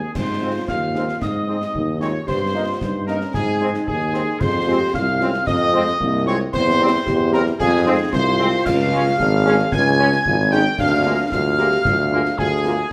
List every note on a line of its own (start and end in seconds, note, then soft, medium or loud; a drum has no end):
0.00 0.11 G#4 medium
0.00 0.12 G#4 medium
0.00 0.12 G#5 medium
0.15 0.59 G#2 medium
0.15 0.27 C4 medium
0.15 0.68 C5 loud
0.15 0.69 C5 medium
0.15 0.65 C6 loud
0.15 concert bass drum medium
0.15 snare medium
0.15 crash medium
0.41 0.51 G#3 medium
0.41 0.52 G#3 medium
0.41 0.51 C4 medium
0.41 0.52 C4 medium
0.41 0.52 D#4 medium
0.41 1.22 F4 medium
0.68 1.12 D#2 medium
0.68 1.18 F5 loud
0.68 1.22 F5 loud
0.68 1.18 F6 loud
0.68 concert bass drum medium
0.68 snare medium
0.95 1.04 G#3 medium
0.95 1.05 G#3 medium
0.95 1.04 C4 medium
0.95 1.05 D#4 medium
0.95 snare medium
1.09 snare medium
1.20 1.65 G#2 medium
1.20 1.47 D#4 medium
1.20 2.01 D#5 loud
1.20 2.01 D#5 medium
1.20 1.97 D#6 medium
1.20 concert bass drum medium
1.20 snare medium
1.48 1.58 G#3 medium
1.48 1.57 G#3 medium
1.48 1.60 C4 medium
1.48 1.57 C4 medium
1.48 1.58 D#4 medium
1.62 snare medium
1.74 2.19 D#2 medium
1.74 1.99 D#4 medium
1.74 concert bass drum medium
2.00 2.10 G#3 medium
2.00 2.10 C4 medium
2.00 2.10 D#4 medium
2.00 2.13 F4 medium
2.00 2.26 C#5 loud
2.00 2.07 C#6 medium
2.00 snare medium
2.27 2.72 G2 medium
2.27 2.39 G4 medium
2.27 3.03 C5 loud
2.27 3.04 C5 loud
2.27 3.04 C6 loud
2.27 concert bass drum medium
2.27 snare medium
2.27 crash soft
2.54 2.63 A#3 medium
2.54 2.63 D#4 medium
2.54 2.83 F4 medium
2.81 3.25 G2 medium
2.81 3.09 D#4 medium
2.81 concert bass drum medium
2.81 snare medium
3.07 3.17 A#3 medium
3.07 3.35 C#4 medium
3.07 3.17 D#4 medium
3.07 3.19 A#4 medium
3.07 3.32 A#4 loud
3.07 3.13 A#5 medium
3.07 snare medium
3.21 snare medium
3.34 3.79 G#2 loud
3.34 3.60 C4 medium
3.34 3.72 G#4 loud
3.34 3.84 G#4 medium
3.34 3.83 G#5 loud
3.34 concert bass drum medium
3.34 snare medium
3.60 3.70 G#3 medium
3.60 3.70 C4 medium
3.60 3.70 D#4 medium
3.60 4.37 D#4 medium
3.74 snare medium
3.87 4.27 D#2 medium
3.87 4.37 G#4 loud
3.87 4.37 G#5 medium
3.87 concert bass drum medium
4.14 4.23 G#3 medium
4.14 4.23 C4 medium
4.14 4.23 D#4 medium
4.14 snare medium
4.40 4.85 F2 loud
4.40 4.65 G#4 medium
4.40 4.93 C5 loud
4.40 4.90 C5 medium
4.40 4.90 C6 loud
4.40 concert bass drum medium
4.40 snare medium
4.40 crash soft
4.67 4.77 G#3 medium
4.67 4.77 C4 medium
4.67 4.77 F4 medium
4.67 4.92 G4 medium
4.94 5.38 C2 loud
4.94 5.06 F4 medium
4.94 5.47 F5 loud
4.94 5.49 F6 loud
4.94 concert bass drum medium
4.94 snare medium
5.20 5.30 G#3 medium
5.20 5.30 C4 loud
5.20 5.30 C4 medium
5.20 5.33 C#4 medium
5.20 5.30 F4 medium
5.20 snare medium
5.34 snare medium
5.47 5.91 F2 loud
5.47 5.97 C4 medium
5.47 6.22 D#5 loud
5.47 6.23 D#5 loud
5.47 6.26 D#6 loud
5.47 concert bass drum medium
5.47 snare medium
5.73 5.83 G#3 medium
5.73 5.83 C4 medium
5.73 5.83 C4 loud
5.73 5.83 F4 medium
5.87 snare medium
6.00 6.44 C2 loud
6.00 6.25 A#3 medium
6.00 concert bass drum medium
6.26 6.36 G#3 medium
6.26 6.39 G#3 medium
6.26 6.36 G#3 medium
6.26 6.36 C4 medium
6.26 6.36 F4 medium
6.26 6.38 C#5 loud
6.26 6.39 C#5 loud
6.26 6.33 C#6 loud
6.26 snare medium
6.53 6.98 E2 loud
6.53 6.78 C4 loud
6.53 7.29 C5 loud
6.53 7.29 C6 loud
6.53 concert bass drum medium
6.53 snare medium
6.53 crash soft
6.79 6.89 G3 medium
6.79 6.90 G3 loud
6.79 6.89 C4 medium
6.79 6.89 C4 loud
6.79 6.92 E4 loud
6.79 6.89 G4 medium
7.05 7.51 E2 loud
7.05 7.38 G4 loud
7.05 concert bass drum medium
7.05 snare medium
7.32 7.42 G3 loud
7.32 7.42 G3 medium
7.32 7.42 C4 medium
7.32 7.42 G4 medium
7.32 7.45 A#4 loud
7.32 7.39 A#5 loud
7.32 snare medium
7.47 snare medium
7.59 8.04 F2 loud
7.59 7.84 F4 loud
7.59 8.09 G#4 loud
7.59 7.92 G#5 loud
7.59 concert bass drum medium
7.59 snare medium
7.85 7.95 G#3 loud
7.85 7.96 G#3 medium
7.85 7.95 C4 loud
7.85 7.96 C4 medium
7.85 8.11 D#4 loud
7.85 7.96 F4 medium
8.12 8.57 C2 loud
8.12 9.20 F4 loud
8.12 8.62 C5 loud
8.12 8.66 C5 loud
8.12 8.62 C6 loud
8.12 concert bass drum medium
8.12 snare medium
8.39 8.48 G#3 loud
8.39 8.49 G#3 medium
8.39 8.49 C4 medium
8.39 8.49 C4 loud
8.39 8.49 F4 medium
8.65 9.11 C#2 loud
8.65 9.72 F5 loud
8.65 9.73 F5 loud
8.65 9.68 F6 loud
8.65 concert bass drum medium
8.65 snare medium
8.65 crash medium
8.92 9.02 G#3 medium
8.92 9.02 G#3 loud
8.92 9.02 C#4 medium
8.92 9.02 C#4 loud
8.92 9.02 G#4 medium
9.19 9.64 G#1 loud
9.19 10.25 G#4 loud
9.19 concert bass drum medium
9.19 snare medium
9.46 9.55 G#3 medium
9.46 9.55 G#3 loud
9.46 9.55 C#4 loud
9.46 9.55 C#4 medium
9.46 9.55 G#4 medium
9.46 snare medium
9.59 snare medium
9.72 10.17 C#2 loud
9.72 10.48 G#5 loud
9.72 10.53 G#5 loud
9.72 10.54 G#6 loud
9.72 concert bass drum medium
9.72 snare medium
9.98 10.08 G#3 loud
9.98 10.09 G#3 medium
9.98 10.08 C#4 loud
9.98 10.09 C#4 medium
9.98 10.08 G#4 medium
10.12 snare medium
10.26 10.66 G#1 loud
10.26 10.38 F4 loud
10.26 concert bass drum medium
10.51 10.61 G#3 loud
10.51 10.62 G#3 medium
10.51 10.61 C#4 loud
10.51 10.62 C#4 medium
10.51 10.64 D#4 loud
10.51 10.62 G#4 medium
10.51 10.77 G5 loud
10.51 10.65 G5 loud
10.51 10.79 G6 loud
10.51 snare medium
10.78 11.23 D2 loud
10.78 11.33 D4 loud
10.78 11.28 F5 loud
10.78 11.28 F6 loud
10.78 concert bass drum medium
10.78 snare medium
10.78 crash soft
11.05 11.15 G#3 loud
11.05 11.14 A#3 loud
11.05 11.15 A#3 medium
11.05 11.15 F4 medium
11.05 11.15 G#4 medium
11.31 11.76 D2 loud
11.31 11.59 F4 loud
11.31 12.34 F5 loud
11.31 12.35 F5 loud
11.31 12.40 F6 loud
11.31 concert bass drum medium
11.31 snare medium
11.58 11.68 G#3 medium
11.58 11.68 A#3 medium
11.58 11.69 A#3 medium
11.58 11.68 F4 medium
11.58 11.85 G4 loud
11.58 11.68 G#4 medium
11.58 snare medium
11.72 snare medium
11.85 12.30 D2 loud
11.85 11.97 F4 loud
11.85 concert bass drum loud
11.85 snare medium
12.11 12.22 G#3 loud
12.11 12.21 A#3 medium
12.11 12.21 A#3 loud
12.11 12.36 D4 medium
12.11 12.21 F4 medium
12.11 12.21 G#4 medium
12.25 snare medium
12.38 12.83 D2 loud
12.38 12.50 F4 loud
12.38 12.87 G#4 loud
12.38 12.92 G#4 loud
12.38 12.93 G#5 loud
12.38 concert bass drum medium
12.65 12.74 G#3 medium
12.65 12.74 A#3 medium
12.65 12.74 F4 medium
12.65 12.78 F4 medium
12.65 12.74 G#4 medium
12.65 snare medium